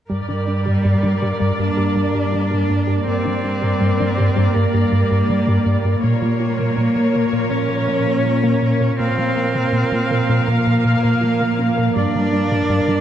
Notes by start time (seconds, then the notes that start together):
0.10 G2 G3 A#3 A#4 D5
0.29 G3 D4
0.47 G3 D4
0.66 G2 G4
0.84 G2 G3
1.03 G3 D4
1.22 G2 G4
1.40 G2 G3
1.59 G2 D4 G4
1.77 G2 G4
1.96 G2 G3
2.14 G2 G4
2.33 G3 D4
2.51 G2 G3
2.69 G2 A#3
2.87 G2 G4
3.06 G2 G3 A#3 C4 A#4 D5
3.25 G3 D4
3.43 G3 D4
3.62 G2 G4
3.81 G2 G3
4.00 G3 D4
4.17 G2 G4
4.36 G2 G3
4.54 G2 A#3 G4
4.74 G2 G4
4.92 G2 G3
5.11 G2 G4
5.29 G3 D4
5.47 G2 G3
5.66 G2 A#3
5.85 G2 G4
6.02 A#2 F3 A#3 A#4 C#5
6.22 A#3 F4
6.40 A#3 F4
6.59 A#2 A#4
6.76 A#2 A#3
6.95 A#3 F4
7.14 A#2 A#4
7.33 A#2 A#3
7.50 A#2 C#4 A#4
7.69 A#2 A#4
7.88 A#2 A#3
8.07 A#2 A#4
8.25 A#3 F4
8.43 A#2 A#3
8.62 A#2 C#4
8.81 A#2 A#4
8.98 A#2 F3 A#3 C4 A#4 F5
9.18 A#3 F4
9.36 A#3 F4
9.55 A#2 A#4
9.73 A#2 A#3
9.92 A#3 F4
10.11 A#2 A#4
10.29 A#2 A#3
10.48 A#2 A#3 A#4
10.66 A#2 A#4
10.85 A#2 A#3
11.03 A#2 A#4
11.21 A#3 F4
11.40 A#2 A#3
11.59 A#2 C#4
11.78 A#2 A#4
11.95 G2 G3 A#3 D4 A#4 D5
12.14 G3 D4
12.33 G3 D4
12.51 G2 G4
12.70 G2 G3
12.88 G3 D4